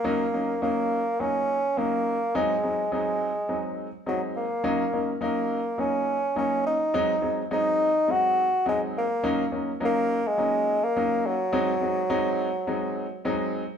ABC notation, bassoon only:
X:1
M:4/4
L:1/16
Q:1/4=104
K:Ebdor
V:1 name="Bassoon"
B,4 B,4 D4 B,4 | A,4 A,6 z2 G,2 B,2- | B,4 B,4 D4 D2 E2- | E4 E4 G4 A,2 B,2- |
B,2 z2 B,3 A,4 B,3 G,2- | G,12 z4 |]